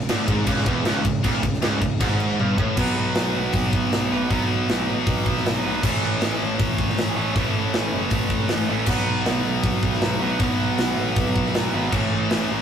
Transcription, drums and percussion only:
0.00 snare soft
0.09 snare loud
0.09 crash medium
0.28 kick loud
0.28 crash medium
0.47 kick loud
0.47 crash medium
0.58 snare soft
0.66 kick loud
0.66 crash medium
0.85 snare loud
0.85 crash medium
1.05 kick loud
1.05 crash medium
1.24 kick loud
1.24 crash medium
1.43 kick medium
1.43 crash medium
1.54 snare soft
1.62 snare loud
1.62 crash medium
1.82 kick medium
1.82 crash medium
2.01 kick loud
2.01 crash medium
2.20 crash medium
2.40 high tom medium
2.58 kick medium
2.77 kick loud
2.77 crash loud
3.15 snare loud
3.15 open hi-hat medium
3.53 kick loud
3.53 open hi-hat medium
3.73 kick medium
3.92 snare loud
3.92 open hi-hat medium
4.31 kick loud
4.31 open hi-hat medium
4.69 snare loud
4.69 open hi-hat medium
5.07 kick loud
5.07 open hi-hat medium
5.26 kick medium
5.37 snare soft
5.46 snare loud
5.46 open hi-hat medium
5.83 kick loud
5.83 crash loud
6.21 snare loud
6.21 open hi-hat medium
6.60 kick loud
6.60 open hi-hat medium
6.78 kick medium
6.89 snare soft
6.98 snare loud
6.98 open hi-hat medium
7.36 kick loud
7.36 open hi-hat medium
7.73 snare loud
7.73 open hi-hat medium
8.10 kick loud
8.10 open hi-hat medium
8.30 kick medium
8.48 snare loud
8.48 open hi-hat medium
8.86 kick loud
8.86 crash loud
9.26 snare loud
9.26 open hi-hat medium
9.63 kick loud
9.63 open hi-hat medium
9.83 kick medium
9.94 snare soft
10.01 snare loud
10.01 open hi-hat medium
10.39 kick loud
10.39 open hi-hat medium
10.78 snare loud
10.78 open hi-hat medium
11.16 kick loud
11.16 open hi-hat medium
11.36 kick medium
11.46 snare soft
11.54 snare loud
11.54 open hi-hat medium
11.92 kick loud
11.92 crash loud
12.30 snare loud
12.30 open hi-hat medium

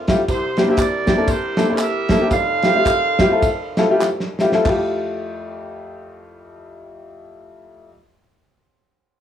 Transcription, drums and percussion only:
0.07 kick medium
0.07 snare loud
0.07 ride medium
0.07 tambourine medium
0.28 kick loud
0.28 ride medium
0.28 tambourine medium
0.57 snare loud
0.57 ride medium
0.57 tambourine medium
0.77 kick loud
0.77 clap loud
0.77 ride medium
0.77 tambourine loud
1.07 kick medium
1.07 snare loud
1.07 ride medium
1.07 tambourine medium
1.28 kick loud
1.28 ride medium
1.28 tambourine medium
1.57 snare loud
1.57 ride medium
1.57 tambourine medium
1.78 clap loud
1.78 ride medium
1.78 tambourine loud
2.09 kick loud
2.09 snare loud
2.09 ride medium
2.09 tambourine medium
2.31 kick loud
2.31 ride medium
2.31 tambourine medium
2.62 snare loud
2.62 ride medium
2.62 tambourine medium
2.85 kick medium
2.85 clap loud
2.85 ride medium
2.85 tambourine loud
3.19 kick medium
3.19 snare loud
3.19 ride medium
3.19 tambourine medium
3.42 kick loud
3.42 ride medium
3.42 tambourine medium
3.77 snare loud
3.77 ride medium
3.77 tambourine medium
4.01 snare medium
4.01 clap loud
4.01 tambourine medium
4.20 snare medium
4.39 snare medium
4.39 tambourine medium
4.52 snare loud
4.65 kick loud
4.65 clap medium
4.65 crash medium

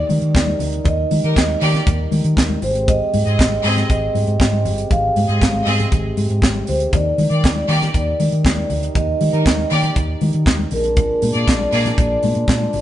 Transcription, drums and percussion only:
0.09 open hi-hat medium
0.09 muted conga soft
0.09 high conga medium
0.22 closed hi-hat soft
0.34 kick loud
0.34 snare medium
0.34 clap medium
0.34 closed hi-hat medium
0.34 high conga medium
0.47 high conga medium
0.60 open hi-hat medium
0.60 muted conga soft
0.60 low conga medium
0.73 closed hi-hat soft
0.84 kick loud
0.84 closed hi-hat medium
0.84 muted conga soft
0.84 low conga medium
1.11 open hi-hat medium
1.11 high conga medium
1.24 closed hi-hat soft
1.36 kick loud
1.36 snare loud
1.36 clap medium
1.36 closed hi-hat medium
1.36 muted conga soft
1.47 high conga medium
1.61 open hi-hat medium
1.74 snare soft
1.74 closed hi-hat medium
1.74 low conga medium
1.86 kick loud
1.86 closed hi-hat medium
1.86 muted conga soft
2.11 open hi-hat medium
2.11 muted conga soft
2.11 high conga medium
2.24 closed hi-hat soft
2.37 kick loud
2.37 snare loud
2.37 clap medium
2.37 closed hi-hat medium
2.37 muted conga soft
2.37 high conga medium
2.49 high conga medium
2.62 open hi-hat medium
2.62 low conga medium
2.75 closed hi-hat soft
2.88 kick loud
2.88 closed hi-hat medium
2.88 muted conga soft
2.88 low conga medium
3.14 open hi-hat medium
3.14 muted conga soft
3.14 high conga medium
3.27 closed hi-hat soft
3.39 kick loud
3.39 snare loud
3.39 clap medium
3.39 closed hi-hat medium
3.50 high conga medium
3.64 open hi-hat medium
3.64 muted conga soft
3.77 snare soft
3.77 closed hi-hat soft
3.77 low conga medium
3.90 kick loud
3.90 closed hi-hat medium
4.15 open hi-hat medium
4.15 high conga medium
4.27 closed hi-hat soft
4.39 kick loud
4.39 snare loud
4.39 clap medium
4.39 closed hi-hat medium
4.39 muted conga soft
4.39 high conga medium
4.53 high conga medium
4.65 open hi-hat medium
4.65 low conga medium
4.78 closed hi-hat soft
4.91 kick loud
4.91 closed hi-hat medium
4.91 muted conga soft
4.91 low conga medium
5.16 open hi-hat medium
5.16 muted conga soft
5.16 high conga medium
5.29 closed hi-hat soft
5.41 kick loud
5.41 snare loud
5.41 clap medium
5.41 closed hi-hat medium
5.41 muted conga soft
5.53 high conga medium
5.67 open hi-hat medium
5.67 high conga soft
5.80 closed hi-hat soft
5.80 low conga medium
5.92 kick loud
5.92 closed hi-hat medium
5.92 muted conga soft
6.17 open hi-hat medium
6.17 high conga medium
6.29 closed hi-hat soft
6.42 kick loud
6.42 snare loud
6.42 clap medium
6.42 closed hi-hat medium
6.42 high conga medium
6.55 high conga medium
6.67 open hi-hat medium
6.67 muted conga soft
6.67 low conga medium
6.80 closed hi-hat soft
6.93 kick loud
6.93 closed hi-hat medium
6.93 low conga medium
7.18 open hi-hat medium
7.18 high conga medium
7.31 closed hi-hat soft
7.44 kick loud
7.44 snare loud
7.44 clap medium
7.44 closed hi-hat medium
7.44 muted conga soft
7.55 high conga medium
7.69 open hi-hat medium
7.69 muted conga soft
7.82 snare soft
7.82 closed hi-hat soft
7.82 low conga medium
7.94 kick loud
7.94 closed hi-hat medium
8.20 open hi-hat medium
8.20 high conga medium
8.32 closed hi-hat soft
8.45 kick loud
8.45 snare loud
8.45 clap medium
8.45 closed hi-hat medium
8.45 high conga medium
8.57 high conga medium
8.70 open hi-hat medium
8.70 muted conga soft
8.70 low conga medium
8.83 closed hi-hat medium
8.95 kick loud
8.95 closed hi-hat medium
8.95 muted conga soft
8.95 low conga medium
9.21 open hi-hat medium
9.21 high conga medium
9.34 closed hi-hat soft
9.46 kick loud
9.46 snare loud
9.46 clap medium
9.46 closed hi-hat medium
9.56 high conga medium
9.70 open hi-hat medium
9.83 closed hi-hat medium
9.83 low conga medium
9.96 kick loud
9.96 closed hi-hat medium
10.21 open hi-hat medium
10.21 high conga medium
10.33 closed hi-hat soft
10.46 kick loud
10.46 snare loud
10.46 clap medium
10.46 closed hi-hat medium
10.46 muted conga soft
10.46 high conga medium
10.58 high conga medium
10.71 open hi-hat medium
10.71 muted conga soft
10.71 low conga medium
10.84 closed hi-hat soft
10.96 kick loud
10.96 closed hi-hat medium
10.96 muted conga soft
10.96 low conga medium
11.22 open hi-hat medium
11.22 high conga medium
11.35 closed hi-hat soft
11.48 kick loud
11.48 snare loud
11.48 clap medium
11.48 closed hi-hat medium
11.59 high conga medium
11.72 open hi-hat medium
11.72 muted conga soft
11.85 snare soft
11.85 closed hi-hat medium
11.85 low conga medium
11.98 kick loud
11.98 closed hi-hat medium
11.98 muted conga soft
12.23 open hi-hat medium
12.23 muted conga soft
12.23 high conga medium
12.35 closed hi-hat soft
12.48 kick loud
12.48 snare loud
12.48 clap medium
12.48 closed hi-hat medium
12.48 muted conga soft
12.48 high conga medium
12.61 high conga medium
12.73 open hi-hat medium
12.73 low conga medium

